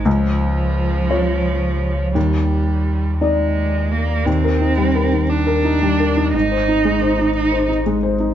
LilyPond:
<<
  \new Staff \with { instrumentName = "Felt piano" } { \time 6/8 \key ees \major \tempo 4. = 58 des,4. <f' des''>4. | ees,4. <ees' d''>4. | ees,16 bes'16 ees'16 g16 bes'16 ees8 bes'16 ees'16 g16 bes'16 ees'16 | aes,16 c''16 ees'16 aes16 c''16 ees'8 c''16 ees'16 aes16 c''16 ees'16 | }
  \new Staff \with { instrumentName = "Cello" } { \time 6/8 \key ees \major f2. | g4. aes4 bes8 | c'4. d'4. | ees'4. ees'8 r4 | }
  \new Staff \with { instrumentName = "Sub bass" } { \clef bass \time 6/8 \key ees \major des,2. | ees,2. | ees,2. | aes,,2. | }
>>